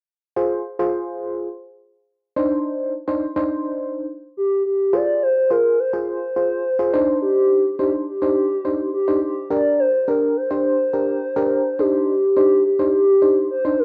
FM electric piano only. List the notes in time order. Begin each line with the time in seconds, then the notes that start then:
0.36 F4 G#4 C5
0.79 F4 G#4 C5
2.36 D4 D#4 C5
3.08 D4 D#4 C5
3.36 D4 D#4 C5
4.93 F4 G#4 C5
5.51 F4 G#4 C5
5.93 F4 G#4 C5
6.36 F4 G#4 C5
6.79 F4 G#4 C5
6.94 D4 D#4 C5
7.79 D4 D#4 C5
8.22 D4 D#4 C5
8.65 D4 D#4 C5
9.08 D4 D#4 C5
9.50 D4 G4 A#4
10.08 D4 G4 A#4
10.50 D4 G4 C5
10.93 D4 G4 A#4
11.36 D4 G4 A#4
11.79 D4 D#4 C5
12.36 D4 D#4 C5
12.79 D4 D#4 C5
13.22 D4 D#4 C5
13.65 D4 D#4 C5